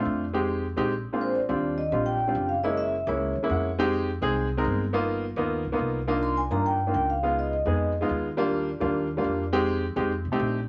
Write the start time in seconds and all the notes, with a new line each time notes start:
Already playing: A3 C4
0.00 D4 F4
0.05 F2
0.33 G#3 C4 D#4 G4
0.77 A#1 G#3 C4 D#4 G4
1.13 A#2 G#3 C4 D4 F4
1.21 C5
1.36 D5
1.49 D#2 G3 C4 D4 F4
1.78 D#5
1.92 A#1 G3 C4 D4 F4
2.06 G5
2.27 G3 C4 D4 F4
2.35 F#1
2.49 F5
2.63 G#3 A#3 C#4 E4 D#5
2.77 E5
3.07 C#2 G#3 A#3 C#4 E4 C#5
3.35 D#2
3.43 G#3 A#3 C#4 E4
3.50 F2 F#5
3.78 G#3 C4 D#4 G4
4.22 C2 G#3 C4 D#4 G#4
4.57 G#3 C4 D#4 A#4
4.65 G1
4.93 A#3 B3 D#4 F4
5.36 D#2 A#3 B3 D#4 F4
5.65 C#2
5.72 A#3 B3 D#4 F4
5.79 C2
6.07 A#3 D4 D#4 F4
6.23 C6
6.37 G#5
6.51 G2 A#3 D4 D#4 F4 A#5
6.66 G5
6.87 A#3 D4 D#4 F4
6.94 C#2 G5
7.10 F5
7.23 G#3 B3 D#4 F4
7.39 D#5
7.53 D#5
7.66 F2 G#3 B3 D#4 G#4
8.01 G#3 B3 D#4 F4
8.09 D#2
8.37 G3 A#3 D4 F4
8.80 D#2 G3 A#3 D4 F4
9.17 G3 A#3 D4 F4
9.24 F2
9.53 G#3 C4 D#4 G4
9.96 F2 G#3 C4 D#4 G4
10.25 C2
10.32 A3 C4 D#4 G4
10.39 A#1